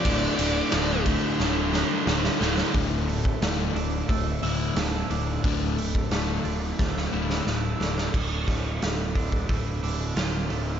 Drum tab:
CC |----------------|----------------|----------------|x---------------|
RD |x-x-x-x---------|----------------|----------------|----------------|
HH |----------------|o-o-o-o-o-o-o-o-|o-o-o-o---------|--o-o-o-o-o-o-o-|
SD |----o---o-o-oooo|----o-------o---|----o---oo-oo-oo|--o-o-------o---|
BD |o-----o---------|o--o----o-------|o--o----o-------|o-o---ooo-------|